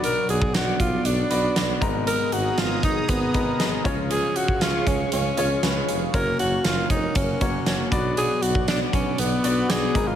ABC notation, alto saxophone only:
X:1
M:4/4
L:1/16
Q:1/4=118
K:Blyd
V:1 name="Alto saxophone"
A2 G2 F2 E2 =D6 z2 | A2 F2 E2 D2 B,6 z2 | G2 F2 E2 C2 C6 z2 | A2 F2 E2 D2 C6 z2 |
G2 F2 =D2 C2 B,4 G3 E |]